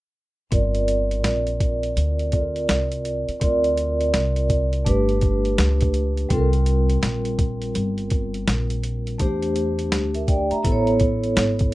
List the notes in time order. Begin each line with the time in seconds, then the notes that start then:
0.51 G1 C4 F4 A#4 D5, kick, closed hi-hat
0.75 closed hi-hat
0.88 closed hi-hat
1.11 closed hi-hat
1.24 A#1, snare, closed hi-hat
1.47 closed hi-hat
1.60 kick, closed hi-hat
1.83 closed hi-hat
1.97 D2, closed hi-hat
2.19 closed hi-hat
2.32 C4 F4 A4 D5, kick, closed hi-hat
2.39 A#4
2.56 closed hi-hat
2.69 C2, snare, closed hi-hat
2.92 closed hi-hat
3.05 closed hi-hat
3.28 muted upright bass stroke, closed hi-hat
3.40 D2 C4 F4 A#4 D5, kick, closed hi-hat
3.64 closed hi-hat
3.77 closed hi-hat
4.01 closed hi-hat
4.14 C2, snare, closed hi-hat
4.36 closed hi-hat
4.50 kick, closed hi-hat
4.73 closed hi-hat
4.85 G1 A3 D4 G4 B4, kick, closed hi-hat
5.09 closed hi-hat
5.21 kick, closed hi-hat
5.45 closed hi-hat
5.58 C#2, snare, closed hi-hat
5.81 kick, closed hi-hat
5.94 closed hi-hat
6.17 closed hi-hat
6.29 C2 G3 C4 F4 A4, kick, closed hi-hat
6.38 A#4
6.53 closed hi-hat
6.66 closed hi-hat
6.90 closed hi-hat
7.03 A#1, snare, closed hi-hat
7.25 closed hi-hat
7.39 kick, closed hi-hat
7.62 closed hi-hat
7.75 G1, closed hi-hat
7.98 closed hi-hat
8.10 kick, closed hi-hat
8.34 closed hi-hat
8.48 A#1, snare, closed hi-hat
8.70 closed hi-hat
8.84 closed hi-hat
9.07 closed hi-hat
9.19 E2 A3 D4 G4 C5, kick, closed hi-hat
9.42 closed hi-hat
9.56 closed hi-hat
9.79 closed hi-hat
9.92 D2, snare, closed hi-hat
10.14 A#4 E5, closed hi-hat
10.28 D5 G5, kick, closed hi-hat
10.51 E5 A#5, muted upright bass stroke, closed hi-hat
10.63 A1 B3 E4 A4 C5, kick, closed hi-hat
10.72 C#5
10.87 closed hi-hat
11.00 kick, closed hi-hat
11.24 closed hi-hat
11.37 G#1, snare, closed hi-hat
11.59 kick, closed hi-hat